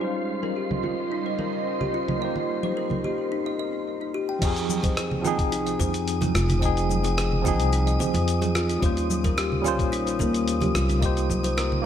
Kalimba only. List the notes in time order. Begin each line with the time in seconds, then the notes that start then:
0.01 C5
0.43 A#4
0.56 G4
0.84 F4
1.12 D#4
1.26 C5
1.39 A#4
1.81 G4
1.94 F4
2.08 D#4
2.22 D#5
2.63 C5
2.77 A#4
3.04 G4
3.32 D#4
3.46 D#5
3.59 D#5
4.01 D#4
4.14 G4
4.29 G5
4.42 D#5
4.84 C5
4.97 G#4
5.25 F4
5.52 D#4
5.66 D#5
5.80 C5
6.22 G#4
6.35 F4
6.49 D#4
6.62 D#5
7.04 C5
7.18 G#4
7.45 F4
7.73 D#4
7.87 D#5
8.00 C5
8.42 G#4
8.55 F4
8.69 D#4
8.83 C5
9.24 A#4
9.38 G4
9.65 F4
9.92 D#4
10.07 C5
10.20 A#4
10.62 G4
10.75 F4
10.89 D#4
11.02 D#5
11.44 C5
11.57 A#4